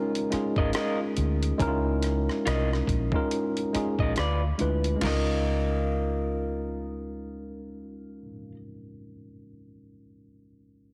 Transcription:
0.00 0.30 G#3 loud
0.00 0.31 C#4 loud
0.00 0.31 D#4 loud
0.00 0.32 F4 medium
0.00 1.62 A#4 loud
0.15 closed hi-hat soft
0.30 1.30 G#3 medium
0.30 1.31 C#4 medium
0.30 1.31 D#4 medium
0.30 1.31 F4 medium
0.30 1.32 G#4 medium
0.30 muted fingered electric bass stroke soft
0.30 cross-stick soft
0.30 closed hi-hat soft
0.56 0.70 G#1 medium
0.56 0.70 F4 medium
0.56 0.70 A#4 medium
0.56 0.70 D#5 medium
0.56 kick medium
0.73 0.98 F4 medium
0.73 0.98 A#4 medium
0.73 0.99 D#5 medium
0.73 cross-stick loud
0.73 closed hi-hat soft
1.17 1.51 D2 medium
1.17 closed hi-hat soft
1.43 closed hi-hat soft
1.58 2.27 C#2 medium
1.58 2.73 G#3 medium
1.58 2.73 C#4 medium
1.58 2.74 D#4 medium
1.58 1.68 E4 medium
1.58 2.75 A#4 loud
1.58 kick medium
1.58 closed hi-hat medium
1.67 2.77 F4 medium
2.03 cross-stick soft
2.03 closed hi-hat medium
2.29 cross-stick soft
2.46 2.79 C2 medium
2.46 2.69 F4 medium
2.46 2.70 A#4 medium
2.46 2.70 D#5 medium
2.46 cross-stick medium
2.46 closed hi-hat medium
2.73 cross-stick soft
2.87 3.08 A#1 medium
2.87 kick medium
2.87 closed hi-hat medium
3.12 3.61 G#3 medium
3.12 3.61 C#4 medium
3.12 3.61 D#4 medium
3.12 3.62 F4 medium
3.12 3.62 A#4 medium
3.12 kick medium
3.31 closed hi-hat medium
3.57 closed hi-hat soft
3.73 4.16 G#3 medium
3.73 4.16 C#4 medium
3.73 4.17 D#4 medium
3.73 4.17 F4 medium
3.73 4.18 G#4 medium
3.73 muted fingered electric bass stroke soft
3.73 cross-stick soft
3.73 closed hi-hat soft
3.99 4.13 A#1 medium
3.99 4.14 F4 soft
3.99 4.13 A#4 soft
3.99 4.12 D#5 medium
3.99 kick medium
4.16 4.51 D2 medium
4.16 4.41 F4 medium
4.16 4.41 B4 medium
4.16 4.41 D5 medium
4.16 cross-stick medium
4.16 closed hi-hat medium
4.58 4.94 D2 medium
4.58 4.93 G#3 medium
4.58 4.93 D4 medium
4.58 4.94 E4 medium
4.58 4.94 F4 medium
4.58 4.95 B4 medium
4.58 closed hi-hat soft
4.84 closed hi-hat soft
4.96 8.21 G#3 medium
4.96 8.24 C#4 medium
5.01 8.29 C#2 medium
5.01 8.28 D#4 medium
5.01 8.52 F4 medium
5.01 8.54 A#4 medium
5.01 snare medium
5.01 floor tom medium
5.01 crash medium
5.06 8.31 F4 medium
5.06 8.34 A#4 medium
5.06 8.56 D#5 medium

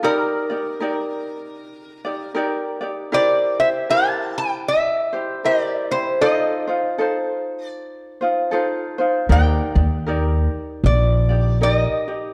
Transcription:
0.03 0.50 D#4 medium
0.03 0.50 G4 medium
0.03 0.50 A#4 medium
0.03 2.32 A#4 medium
0.03 0.48 D5 medium
0.50 0.80 D#4 soft
0.50 0.80 G4 soft
0.50 0.81 D5 soft
0.80 2.05 D#4 medium
0.80 2.05 G4 medium
0.80 2.34 A#4 medium
0.80 2.03 D5 medium
2.05 2.34 D#4 soft
2.05 2.35 G4 soft
2.05 2.36 D5 medium
2.35 2.82 D#4 medium
2.35 2.81 G4 medium
2.35 2.82 A#4 medium
2.35 2.80 D5 medium
2.81 3.12 D#4 soft
2.81 3.12 G4 medium
2.81 3.12 D5 medium
3.12 3.59 E4 medium
3.12 3.59 G4 medium
3.12 3.59 A#4 medium
3.12 3.58 C5 medium
3.12 3.59 D5 medium
3.60 3.89 E4 soft
3.60 3.89 G4 soft
3.60 3.90 C5 soft
3.60 3.68 E5 medium
3.90 5.14 E4 medium
3.90 5.13 G4 medium
3.90 5.12 A#4 medium
3.90 5.13 C5 medium
3.90 4.37 A5 loud
4.38 4.69 G5 medium
4.68 5.45 E5 medium
5.13 5.44 E4 soft
5.13 5.44 G4 soft
5.13 5.44 C5 soft
5.44 5.91 E4 medium
5.44 5.91 G4 medium
5.44 5.91 A#4 medium
5.44 5.90 C5 medium
5.44 5.63 D#5 medium
5.63 5.91 D5 medium
5.91 6.22 E4 soft
5.91 6.21 G4 soft
5.91 6.22 C5 soft
5.91 6.23 C5 medium
6.21 6.68 D#4 medium
6.21 6.67 F4 medium
6.21 6.68 A4 medium
6.21 6.66 C5 medium
6.21 7.65 D#5 medium
6.68 6.98 D#4 soft
6.68 6.98 F4 soft
6.68 6.99 C5 soft
6.98 8.23 D#4 medium
6.98 8.21 F4 medium
6.98 8.22 A4 medium
6.98 8.20 C5 medium
7.65 8.49 D5 medium
8.21 8.51 D#4 soft
8.21 8.52 F4 medium
8.21 8.52 C5 soft
8.51 8.99 D#4 medium
8.51 8.98 F4 medium
8.51 8.99 A4 medium
8.51 8.97 C5 medium
8.98 9.29 D#4 soft
8.98 9.30 F4 soft
8.98 9.30 C5 medium
9.29 9.60 D#2 medium
9.29 9.76 D#4 medium
9.29 9.75 G4 medium
9.29 9.76 A#4 medium
9.29 9.74 D5 medium
9.29 10.90 G5 medium
9.75 10.46 D#2 medium
9.75 10.06 D#4 soft
9.75 10.07 G4 soft
9.75 10.07 D5 soft
10.06 11.30 D#4 medium
10.06 11.30 G4 medium
10.06 11.61 A#4 medium
10.06 11.28 D5 medium
10.84 11.84 A#1 medium
10.84 11.58 D5 medium
11.29 11.60 D#4 soft
11.29 11.61 G4 soft
11.29 11.60 D5 soft
11.61 12.07 D#4 medium
11.61 12.07 G4 medium
11.61 12.08 A#4 medium
11.61 11.74 D5 medium
11.74 12.34 D#5 medium
12.08 12.34 D#4 soft
12.08 12.34 G4 soft

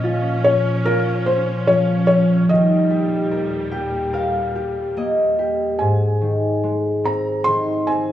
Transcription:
0.00 2.45 A#2 medium
0.00 2.54 A#2 medium
0.00 2.45 F3 medium
0.00 0.45 C#4 medium
0.00 2.45 C#4 medium
0.00 0.31 D#4 medium
0.00 0.85 F4 medium
0.00 0.48 D#5 loud
0.44 1.25 C#4 medium
0.44 0.82 C#5 medium
0.85 3.38 F4 medium
0.85 1.27 A#4 medium
1.26 2.08 C#4 medium
1.26 1.68 C5 medium
1.66 2.54 F3 medium
1.66 2.06 C#5 medium
2.07 4.99 C#4 soft
2.07 2.50 C#5 medium
2.48 5.78 D#2 medium
2.48 5.77 A#2 medium
2.48 5.86 D#3 medium
2.48 5.78 G3 medium
2.48 4.94 D#5 medium
2.91 3.71 G4 medium
3.31 4.13 A#4 medium
3.71 4.55 G4 medium
3.71 5.27 G5 medium
4.13 6.25 A#4 medium
4.13 5.80 F5 medium
4.56 5.38 G4 soft
4.97 8.12 A#3 soft
4.97 6.76 D#5 medium
5.39 5.86 G4 soft
5.79 8.12 G#2 soft
5.79 7.08 G#5 medium
6.21 7.46 D#3 soft
6.63 7.52 G#3 soft
7.04 7.87 C4 soft
7.04 7.44 A#5 medium
7.44 8.12 D#3 soft
7.44 7.88 C6 medium
7.87 8.12 C4 soft
7.87 8.12 G#5 medium

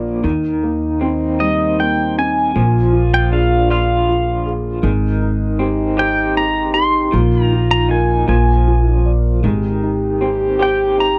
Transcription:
0.00 0.20 A#1 medium
0.00 0.23 F3 medium
0.00 0.20 A#3 medium
0.00 0.32 A#3 medium
0.00 0.32 D4 medium
0.00 0.26 F4 medium
0.00 0.26 A#4 soft
0.00 0.26 D5 medium
0.00 0.26 F5 medium
0.24 2.51 D#2 medium
0.24 2.55 D#3 medium
0.24 2.51 D#3 medium
0.24 2.51 D#4 loud
0.63 1.79 A#3 soft
1.01 2.63 C4 medium
1.01 2.17 C4 medium
1.40 2.52 G3 medium
1.40 1.80 D#5 medium
1.80 2.54 A#3 medium
1.80 2.18 G5 medium
2.18 2.55 C4 medium
2.18 3.14 G#5 loud
2.54 4.80 A#1 medium
2.54 4.83 F3 medium
2.54 4.80 A#3 medium
2.54 4.52 F4 loud
2.93 4.07 F4 soft
3.14 3.32 G5 medium
3.32 4.91 D4 medium
3.32 4.44 G#4 medium
3.32 3.70 F5 medium
3.70 4.91 F4 medium
3.70 4.80 D5 medium
3.70 4.52 F5 medium
4.09 4.82 F4 medium
4.46 4.82 G#4 medium
4.82 7.09 G#1 medium
4.82 7.11 D#3 medium
4.82 7.08 G#3 medium
4.82 7.15 D#4 loud
5.22 6.35 D#4 medium
5.59 7.20 C4 medium
5.59 6.73 G4 medium
5.97 7.20 G4 medium
5.97 7.09 C5 medium
5.97 6.37 G5 medium
6.36 7.11 D#4 medium
6.36 6.72 A#5 loud
6.74 7.12 G4 medium
6.74 7.44 C6 loud
7.12 8.26 A#1 medium
7.12 8.27 D#3 medium
7.12 8.25 A#3 medium
7.12 8.27 F4 loud
7.44 7.71 A#5 loud
7.53 8.26 F4 medium
7.71 7.89 A#5 medium
7.89 8.35 D#4 medium
7.89 8.27 A#4 medium
7.89 8.28 G#5 medium
8.28 9.42 A#1 medium
8.28 9.44 F3 medium
8.28 9.41 A#3 medium
8.28 9.01 F4 medium
8.28 9.11 G#5 medium
8.67 9.42 F4 medium
9.06 9.43 D5 medium
9.42 11.19 G#1 medium
9.42 11.19 D#3 medium
9.42 11.19 G#3 medium
9.42 11.19 G4 loud
9.83 10.96 D#4 medium
10.21 11.19 C4 medium
10.21 11.19 G4 medium
10.59 11.19 G4 medium
10.59 11.19 C5 medium
10.59 11.00 G5 medium
10.98 11.19 D#4 medium
10.98 11.19 A#5 medium

